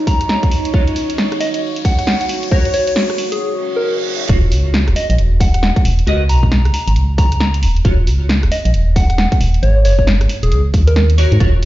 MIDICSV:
0, 0, Header, 1, 8, 480
1, 0, Start_track
1, 0, Key_signature, -6, "minor"
1, 0, Tempo, 444444
1, 797, Time_signature, 4, 2, 24, 8
1, 12583, End_track
2, 0, Start_track
2, 0, Title_t, "Soft synth lead"
2, 0, Program_c, 0, 80
2, 76, Note_on_c, 0, 82, 96
2, 298, Note_off_c, 0, 82, 0
2, 317, Note_on_c, 0, 82, 96
2, 616, Note_off_c, 0, 82, 0
2, 1517, Note_on_c, 0, 75, 88
2, 1611, Note_off_c, 0, 75, 0
2, 1664, Note_on_c, 0, 75, 76
2, 1723, Note_off_c, 0, 75, 0
2, 1997, Note_on_c, 0, 78, 94
2, 2091, Note_off_c, 0, 78, 0
2, 2144, Note_on_c, 0, 78, 76
2, 2204, Note_off_c, 0, 78, 0
2, 2236, Note_on_c, 0, 78, 92
2, 2331, Note_off_c, 0, 78, 0
2, 2385, Note_on_c, 0, 78, 74
2, 2444, Note_off_c, 0, 78, 0
2, 2715, Note_on_c, 0, 73, 93
2, 2877, Note_off_c, 0, 73, 0
2, 2957, Note_on_c, 0, 73, 94
2, 3052, Note_off_c, 0, 73, 0
2, 3105, Note_on_c, 0, 73, 81
2, 3164, Note_off_c, 0, 73, 0
2, 3584, Note_on_c, 0, 68, 91
2, 3643, Note_off_c, 0, 68, 0
2, 3677, Note_on_c, 0, 68, 84
2, 3771, Note_off_c, 0, 68, 0
2, 4065, Note_on_c, 0, 70, 89
2, 4124, Note_off_c, 0, 70, 0
2, 4156, Note_on_c, 0, 70, 82
2, 4251, Note_off_c, 0, 70, 0
2, 5357, Note_on_c, 0, 75, 90
2, 5452, Note_off_c, 0, 75, 0
2, 5505, Note_on_c, 0, 75, 78
2, 5564, Note_off_c, 0, 75, 0
2, 5837, Note_on_c, 0, 78, 93
2, 5931, Note_off_c, 0, 78, 0
2, 5984, Note_on_c, 0, 78, 73
2, 6043, Note_off_c, 0, 78, 0
2, 6077, Note_on_c, 0, 78, 93
2, 6171, Note_off_c, 0, 78, 0
2, 6224, Note_on_c, 0, 78, 74
2, 6283, Note_off_c, 0, 78, 0
2, 6797, Note_on_c, 0, 82, 103
2, 7259, Note_off_c, 0, 82, 0
2, 7277, Note_on_c, 0, 82, 91
2, 7372, Note_off_c, 0, 82, 0
2, 7425, Note_on_c, 0, 82, 78
2, 7484, Note_off_c, 0, 82, 0
2, 7758, Note_on_c, 0, 82, 98
2, 7979, Note_off_c, 0, 82, 0
2, 7997, Note_on_c, 0, 82, 95
2, 8296, Note_off_c, 0, 82, 0
2, 9198, Note_on_c, 0, 75, 87
2, 9292, Note_off_c, 0, 75, 0
2, 9344, Note_on_c, 0, 75, 77
2, 9403, Note_off_c, 0, 75, 0
2, 9676, Note_on_c, 0, 78, 92
2, 9771, Note_off_c, 0, 78, 0
2, 9823, Note_on_c, 0, 78, 79
2, 9883, Note_off_c, 0, 78, 0
2, 9917, Note_on_c, 0, 78, 92
2, 10012, Note_off_c, 0, 78, 0
2, 10064, Note_on_c, 0, 78, 73
2, 10123, Note_off_c, 0, 78, 0
2, 10396, Note_on_c, 0, 73, 97
2, 10558, Note_off_c, 0, 73, 0
2, 10637, Note_on_c, 0, 73, 92
2, 10732, Note_off_c, 0, 73, 0
2, 10785, Note_on_c, 0, 73, 79
2, 10844, Note_off_c, 0, 73, 0
2, 11265, Note_on_c, 0, 68, 92
2, 11324, Note_off_c, 0, 68, 0
2, 11357, Note_on_c, 0, 68, 79
2, 11452, Note_off_c, 0, 68, 0
2, 11744, Note_on_c, 0, 70, 86
2, 11803, Note_off_c, 0, 70, 0
2, 12583, End_track
3, 0, Start_track
3, 0, Title_t, "Ambient pad"
3, 0, Program_c, 1, 92
3, 0, Note_on_c, 1, 63, 84
3, 0, Note_on_c, 1, 71, 73
3, 0, Note_on_c, 1, 73, 93
3, 0, Note_on_c, 1, 78, 75
3, 557, Note_off_c, 1, 71, 0
3, 557, Note_off_c, 1, 78, 0
3, 763, Note_on_c, 1, 66, 77
3, 1185, Note_on_c, 1, 77, 80
3, 2716, Note_on_c, 1, 61, 83
3, 2717, Note_off_c, 1, 77, 0
3, 2880, Note_on_c, 1, 68, 75
3, 3496, Note_off_c, 1, 63, 0
3, 3496, Note_off_c, 1, 73, 0
3, 3497, Note_off_c, 1, 66, 0
3, 3677, Note_off_c, 1, 61, 0
3, 3678, Note_off_c, 1, 68, 0
3, 12583, End_track
4, 0, Start_track
4, 0, Title_t, "Clean electric guitar"
4, 0, Program_c, 2, 27
4, 794, Note_on_c, 2, 65, 79
4, 798, Note_on_c, 2, 66, 57
4, 802, Note_on_c, 2, 73, 78
4, 892, Note_off_c, 2, 66, 0
4, 893, Note_off_c, 2, 65, 0
4, 893, Note_off_c, 2, 73, 0
4, 2714, Note_on_c, 2, 66, 77
4, 2718, Note_on_c, 2, 70, 70
4, 2724, Note_on_c, 2, 73, 75
4, 2867, Note_off_c, 2, 73, 0
4, 2868, Note_off_c, 2, 66, 0
4, 2868, Note_off_c, 2, 70, 0
4, 4634, Note_on_c, 2, 65, 80
4, 4638, Note_on_c, 2, 66, 64
4, 4645, Note_on_c, 2, 73, 75
4, 4732, Note_off_c, 2, 65, 0
4, 4732, Note_off_c, 2, 66, 0
4, 4732, Note_off_c, 2, 73, 0
4, 6553, Note_on_c, 2, 66, 81
4, 6559, Note_on_c, 2, 70, 64
4, 6565, Note_on_c, 2, 71, 65
4, 6570, Note_on_c, 2, 75, 76
4, 6708, Note_off_c, 2, 66, 0
4, 6708, Note_off_c, 2, 70, 0
4, 6708, Note_off_c, 2, 71, 0
4, 6708, Note_off_c, 2, 75, 0
4, 8474, Note_on_c, 2, 65, 75
4, 8479, Note_on_c, 2, 66, 67
4, 8485, Note_on_c, 2, 73, 72
4, 8573, Note_off_c, 2, 65, 0
4, 8573, Note_off_c, 2, 66, 0
4, 8573, Note_off_c, 2, 73, 0
4, 12074, Note_on_c, 2, 73, 95
4, 12078, Note_on_c, 2, 70, 75
4, 12085, Note_on_c, 2, 66, 81
4, 12295, Note_off_c, 2, 66, 0
4, 12295, Note_off_c, 2, 70, 0
4, 12295, Note_off_c, 2, 73, 0
4, 12313, Note_on_c, 2, 65, 77
4, 12318, Note_on_c, 2, 66, 69
4, 12326, Note_on_c, 2, 73, 78
4, 12412, Note_off_c, 2, 65, 0
4, 12412, Note_off_c, 2, 66, 0
4, 12412, Note_off_c, 2, 73, 0
4, 12583, End_track
5, 0, Start_track
5, 0, Title_t, "FM bass"
5, 0, Program_c, 3, 39
5, 4637, Note_on_c, 3, 27, 102
5, 4877, Note_on_c, 3, 37, 93
5, 4893, Note_off_c, 3, 27, 0
5, 5266, Note_on_c, 3, 27, 87
5, 5282, Note_off_c, 3, 37, 0
5, 5334, Note_off_c, 3, 27, 0
5, 5505, Note_on_c, 3, 34, 76
5, 5597, Note_on_c, 3, 27, 86
5, 5613, Note_off_c, 3, 34, 0
5, 6164, Note_off_c, 3, 27, 0
5, 6317, Note_on_c, 3, 27, 92
5, 6509, Note_off_c, 3, 27, 0
5, 6557, Note_on_c, 3, 37, 98
5, 6798, Note_on_c, 3, 35, 90
5, 6814, Note_off_c, 3, 37, 0
5, 7185, Note_on_c, 3, 37, 86
5, 7201, Note_off_c, 3, 35, 0
5, 7253, Note_off_c, 3, 37, 0
5, 7426, Note_on_c, 3, 32, 75
5, 7518, Note_on_c, 3, 37, 84
5, 7535, Note_off_c, 3, 32, 0
5, 8238, Note_on_c, 3, 27, 97
5, 8254, Note_off_c, 3, 37, 0
5, 8430, Note_off_c, 3, 27, 0
5, 8478, Note_on_c, 3, 27, 102
5, 8718, Note_on_c, 3, 37, 96
5, 8734, Note_off_c, 3, 27, 0
5, 9105, Note_on_c, 3, 27, 90
5, 9122, Note_off_c, 3, 37, 0
5, 9174, Note_off_c, 3, 27, 0
5, 9345, Note_on_c, 3, 34, 79
5, 9438, Note_on_c, 3, 27, 86
5, 9454, Note_off_c, 3, 34, 0
5, 10004, Note_off_c, 3, 27, 0
5, 10157, Note_on_c, 3, 27, 96
5, 10350, Note_off_c, 3, 27, 0
5, 10397, Note_on_c, 3, 32, 103
5, 10637, Note_on_c, 3, 30, 97
5, 10654, Note_off_c, 3, 32, 0
5, 11025, Note_on_c, 3, 32, 86
5, 11042, Note_off_c, 3, 30, 0
5, 11093, Note_off_c, 3, 32, 0
5, 11265, Note_on_c, 3, 27, 78
5, 11358, Note_on_c, 3, 37, 85
5, 11374, Note_off_c, 3, 27, 0
5, 11597, Note_on_c, 3, 39, 98
5, 11613, Note_off_c, 3, 37, 0
5, 12164, Note_off_c, 3, 39, 0
5, 12224, Note_on_c, 3, 44, 94
5, 12293, Note_off_c, 3, 44, 0
5, 12317, Note_on_c, 3, 27, 101
5, 12572, Note_off_c, 3, 27, 0
5, 12583, End_track
6, 0, Start_track
6, 0, Title_t, "Reverse cymbal"
6, 0, Program_c, 4, 119
6, 3676, Note_on_c, 4, 60, 78
6, 4636, Note_off_c, 4, 60, 0
6, 12583, End_track
7, 0, Start_track
7, 0, Title_t, "Riser"
7, 0, Program_c, 5, 103
7, 0, Note_on_c, 5, 60, 77
7, 3677, Note_off_c, 5, 60, 0
7, 12583, End_track
8, 0, Start_track
8, 0, Title_t, "Drums"
8, 77, Note_on_c, 9, 36, 106
8, 77, Note_on_c, 9, 46, 106
8, 185, Note_off_c, 9, 36, 0
8, 185, Note_off_c, 9, 46, 0
8, 224, Note_on_c, 9, 37, 31
8, 224, Note_on_c, 9, 42, 62
8, 316, Note_on_c, 9, 38, 118
8, 332, Note_off_c, 9, 37, 0
8, 332, Note_off_c, 9, 42, 0
8, 424, Note_off_c, 9, 38, 0
8, 465, Note_on_c, 9, 36, 106
8, 465, Note_on_c, 9, 42, 50
8, 556, Note_on_c, 9, 46, 88
8, 573, Note_off_c, 9, 36, 0
8, 573, Note_off_c, 9, 42, 0
8, 664, Note_off_c, 9, 46, 0
8, 704, Note_on_c, 9, 42, 61
8, 797, Note_on_c, 9, 36, 127
8, 812, Note_off_c, 9, 42, 0
8, 905, Note_off_c, 9, 36, 0
8, 945, Note_on_c, 9, 42, 36
8, 1037, Note_on_c, 9, 46, 96
8, 1053, Note_off_c, 9, 42, 0
8, 1145, Note_off_c, 9, 46, 0
8, 1185, Note_on_c, 9, 42, 63
8, 1277, Note_on_c, 9, 38, 118
8, 1293, Note_off_c, 9, 42, 0
8, 1385, Note_off_c, 9, 38, 0
8, 1425, Note_on_c, 9, 37, 65
8, 1425, Note_on_c, 9, 42, 32
8, 1518, Note_on_c, 9, 46, 88
8, 1533, Note_off_c, 9, 37, 0
8, 1533, Note_off_c, 9, 42, 0
8, 1626, Note_off_c, 9, 46, 0
8, 1665, Note_on_c, 9, 42, 63
8, 1773, Note_off_c, 9, 42, 0
8, 1904, Note_on_c, 9, 42, 49
8, 1997, Note_on_c, 9, 36, 111
8, 1997, Note_on_c, 9, 46, 101
8, 2012, Note_off_c, 9, 42, 0
8, 2105, Note_off_c, 9, 36, 0
8, 2105, Note_off_c, 9, 46, 0
8, 2145, Note_on_c, 9, 37, 33
8, 2145, Note_on_c, 9, 42, 64
8, 2237, Note_on_c, 9, 38, 123
8, 2253, Note_off_c, 9, 37, 0
8, 2253, Note_off_c, 9, 42, 0
8, 2345, Note_off_c, 9, 38, 0
8, 2385, Note_on_c, 9, 42, 50
8, 2477, Note_on_c, 9, 46, 90
8, 2493, Note_off_c, 9, 42, 0
8, 2585, Note_off_c, 9, 46, 0
8, 2625, Note_on_c, 9, 42, 62
8, 2717, Note_on_c, 9, 36, 124
8, 2733, Note_off_c, 9, 42, 0
8, 2825, Note_off_c, 9, 36, 0
8, 2865, Note_on_c, 9, 42, 38
8, 2956, Note_on_c, 9, 46, 95
8, 2973, Note_off_c, 9, 42, 0
8, 3064, Note_off_c, 9, 46, 0
8, 3104, Note_on_c, 9, 42, 65
8, 3196, Note_on_c, 9, 38, 124
8, 3212, Note_off_c, 9, 42, 0
8, 3304, Note_off_c, 9, 38, 0
8, 3345, Note_on_c, 9, 37, 64
8, 3345, Note_on_c, 9, 42, 32
8, 3438, Note_on_c, 9, 46, 84
8, 3453, Note_off_c, 9, 37, 0
8, 3453, Note_off_c, 9, 42, 0
8, 3546, Note_off_c, 9, 46, 0
8, 3586, Note_on_c, 9, 42, 67
8, 3694, Note_off_c, 9, 42, 0
8, 4636, Note_on_c, 9, 36, 126
8, 4638, Note_on_c, 9, 42, 65
8, 4744, Note_off_c, 9, 36, 0
8, 4746, Note_off_c, 9, 42, 0
8, 4878, Note_on_c, 9, 46, 107
8, 4986, Note_off_c, 9, 46, 0
8, 5118, Note_on_c, 9, 38, 118
8, 5226, Note_off_c, 9, 38, 0
8, 5266, Note_on_c, 9, 37, 69
8, 5266, Note_on_c, 9, 42, 38
8, 5358, Note_on_c, 9, 46, 96
8, 5374, Note_off_c, 9, 37, 0
8, 5374, Note_off_c, 9, 42, 0
8, 5466, Note_off_c, 9, 46, 0
8, 5506, Note_on_c, 9, 42, 66
8, 5599, Note_off_c, 9, 42, 0
8, 5599, Note_on_c, 9, 42, 68
8, 5707, Note_off_c, 9, 42, 0
8, 5837, Note_on_c, 9, 36, 104
8, 5838, Note_on_c, 9, 46, 112
8, 5945, Note_off_c, 9, 36, 0
8, 5946, Note_off_c, 9, 46, 0
8, 5986, Note_on_c, 9, 37, 33
8, 5986, Note_on_c, 9, 42, 65
8, 6078, Note_on_c, 9, 38, 118
8, 6094, Note_off_c, 9, 37, 0
8, 6094, Note_off_c, 9, 42, 0
8, 6186, Note_off_c, 9, 38, 0
8, 6225, Note_on_c, 9, 36, 102
8, 6226, Note_on_c, 9, 42, 54
8, 6319, Note_on_c, 9, 46, 99
8, 6333, Note_off_c, 9, 36, 0
8, 6334, Note_off_c, 9, 42, 0
8, 6427, Note_off_c, 9, 46, 0
8, 6467, Note_on_c, 9, 42, 39
8, 6559, Note_off_c, 9, 42, 0
8, 6559, Note_on_c, 9, 42, 61
8, 6667, Note_off_c, 9, 42, 0
8, 6797, Note_on_c, 9, 46, 101
8, 6905, Note_off_c, 9, 46, 0
8, 6945, Note_on_c, 9, 36, 59
8, 7037, Note_on_c, 9, 38, 118
8, 7053, Note_off_c, 9, 36, 0
8, 7145, Note_off_c, 9, 38, 0
8, 7186, Note_on_c, 9, 37, 65
8, 7186, Note_on_c, 9, 42, 35
8, 7277, Note_on_c, 9, 46, 90
8, 7294, Note_off_c, 9, 37, 0
8, 7294, Note_off_c, 9, 42, 0
8, 7385, Note_off_c, 9, 46, 0
8, 7425, Note_on_c, 9, 42, 68
8, 7517, Note_off_c, 9, 42, 0
8, 7517, Note_on_c, 9, 42, 69
8, 7625, Note_off_c, 9, 42, 0
8, 7757, Note_on_c, 9, 36, 112
8, 7758, Note_on_c, 9, 46, 112
8, 7865, Note_off_c, 9, 36, 0
8, 7866, Note_off_c, 9, 46, 0
8, 7905, Note_on_c, 9, 37, 32
8, 7905, Note_on_c, 9, 42, 63
8, 7997, Note_on_c, 9, 38, 125
8, 8013, Note_off_c, 9, 37, 0
8, 8013, Note_off_c, 9, 42, 0
8, 8105, Note_off_c, 9, 38, 0
8, 8145, Note_on_c, 9, 42, 52
8, 8237, Note_on_c, 9, 46, 92
8, 8253, Note_off_c, 9, 42, 0
8, 8345, Note_off_c, 9, 46, 0
8, 8386, Note_on_c, 9, 42, 37
8, 8477, Note_on_c, 9, 36, 127
8, 8478, Note_off_c, 9, 42, 0
8, 8478, Note_on_c, 9, 42, 63
8, 8585, Note_off_c, 9, 36, 0
8, 8586, Note_off_c, 9, 42, 0
8, 8718, Note_on_c, 9, 46, 99
8, 8826, Note_off_c, 9, 46, 0
8, 8957, Note_on_c, 9, 38, 127
8, 9065, Note_off_c, 9, 38, 0
8, 9106, Note_on_c, 9, 37, 65
8, 9106, Note_on_c, 9, 42, 35
8, 9198, Note_on_c, 9, 46, 88
8, 9214, Note_off_c, 9, 37, 0
8, 9214, Note_off_c, 9, 42, 0
8, 9306, Note_off_c, 9, 46, 0
8, 9346, Note_on_c, 9, 42, 66
8, 9438, Note_off_c, 9, 42, 0
8, 9438, Note_on_c, 9, 42, 68
8, 9546, Note_off_c, 9, 42, 0
8, 9677, Note_on_c, 9, 36, 108
8, 9678, Note_on_c, 9, 46, 107
8, 9785, Note_off_c, 9, 36, 0
8, 9786, Note_off_c, 9, 46, 0
8, 9826, Note_on_c, 9, 37, 33
8, 9826, Note_on_c, 9, 42, 62
8, 9917, Note_on_c, 9, 38, 123
8, 9934, Note_off_c, 9, 37, 0
8, 9934, Note_off_c, 9, 42, 0
8, 10025, Note_off_c, 9, 38, 0
8, 10065, Note_on_c, 9, 36, 109
8, 10066, Note_on_c, 9, 42, 49
8, 10158, Note_on_c, 9, 46, 96
8, 10173, Note_off_c, 9, 36, 0
8, 10174, Note_off_c, 9, 42, 0
8, 10266, Note_off_c, 9, 46, 0
8, 10307, Note_on_c, 9, 42, 35
8, 10398, Note_off_c, 9, 42, 0
8, 10398, Note_on_c, 9, 42, 65
8, 10506, Note_off_c, 9, 42, 0
8, 10637, Note_on_c, 9, 46, 96
8, 10745, Note_off_c, 9, 46, 0
8, 10785, Note_on_c, 9, 36, 61
8, 10878, Note_on_c, 9, 38, 124
8, 10893, Note_off_c, 9, 36, 0
8, 10986, Note_off_c, 9, 38, 0
8, 11026, Note_on_c, 9, 37, 65
8, 11026, Note_on_c, 9, 42, 36
8, 11118, Note_on_c, 9, 46, 84
8, 11134, Note_off_c, 9, 37, 0
8, 11134, Note_off_c, 9, 42, 0
8, 11226, Note_off_c, 9, 46, 0
8, 11265, Note_on_c, 9, 42, 67
8, 11358, Note_off_c, 9, 42, 0
8, 11358, Note_on_c, 9, 42, 65
8, 11466, Note_off_c, 9, 42, 0
8, 11597, Note_on_c, 9, 36, 109
8, 11597, Note_on_c, 9, 46, 104
8, 11705, Note_off_c, 9, 36, 0
8, 11705, Note_off_c, 9, 46, 0
8, 11745, Note_on_c, 9, 37, 33
8, 11745, Note_on_c, 9, 42, 62
8, 11838, Note_on_c, 9, 38, 122
8, 11853, Note_off_c, 9, 37, 0
8, 11853, Note_off_c, 9, 42, 0
8, 11946, Note_off_c, 9, 38, 0
8, 11985, Note_on_c, 9, 42, 50
8, 12076, Note_on_c, 9, 46, 88
8, 12093, Note_off_c, 9, 42, 0
8, 12184, Note_off_c, 9, 46, 0
8, 12225, Note_on_c, 9, 42, 36
8, 12317, Note_off_c, 9, 42, 0
8, 12317, Note_on_c, 9, 36, 121
8, 12317, Note_on_c, 9, 42, 65
8, 12425, Note_off_c, 9, 36, 0
8, 12425, Note_off_c, 9, 42, 0
8, 12583, End_track
0, 0, End_of_file